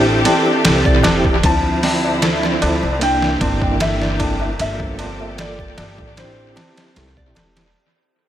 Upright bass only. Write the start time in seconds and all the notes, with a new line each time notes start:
Already playing: A1
0.65 C2
1.05 E1
1.44 D2
2.63 D2
2.83 C2
3.41 G1
4.60 G1
5.78 G1
5.99 A1
6.97 C2
7.36 E1